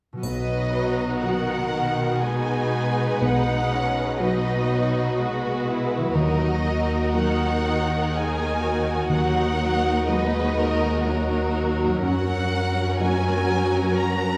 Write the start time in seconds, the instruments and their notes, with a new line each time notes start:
0.13 harp B2 F#3
0.17 harp B3 F#4
0.22 grand piano B1, cello section B2, viola section F#3 F#4, violin section D#4 B4 D#5, triangle
1.23 viola section D#3, grand piano F#3 B3 F#4, violin section A#4 F#5
1.73 viola section D#3
2.21 viola section G#3 D#4, violin section F#4 B4 G#5
3.20 grand piano B1, cello section B2, viola section D#4, violin section D#4 F#5
3.72 viola section C#4
4.19 grand piano F#3 F#4 B4, viola section F#3 D#4, violin section F#4 B4 D#5
4.71 viola section F#3
5.18 viola section G#3 F#4, violin section B4
5.68 viola section E4
5.97 harp D#3
6.01 harp F#3
6.06 harp F#4
6.11 cello section D#2, violin section F#4 A#4 D#5, harp A#5
6.15 grand piano D#2, viola section F#3 D#4
6.64 violin section A#4
7.14 viola section D#3, grand piano F#3 F#4 A#4, violin section F#5
7.65 viola section D#3
8.13 violin section G#4 G#5
8.63 violin section F#4
9.09 grand piano D#2, cello section D#2, viola section F#3 D#4, violin section A#4 F#5
9.59 viola section F#3
10.07 grand piano F#3 F#4, viola section G#3, violin section F#4 B4 D#5
10.58 violin section A#4
11.05 viola section F#3 F#4, violin section D#4 A#4
11.85 harp F#2
11.89 harp F#3
11.94 harp C#4
11.98 cello section F#2, viola section F#3 C#4, harp A#4
12.02 grand piano F#2, violin section F#4 A#4 F#5
13.00 grand piano F#3 F#4 A#4, violin section G#5
13.98 violin section A#5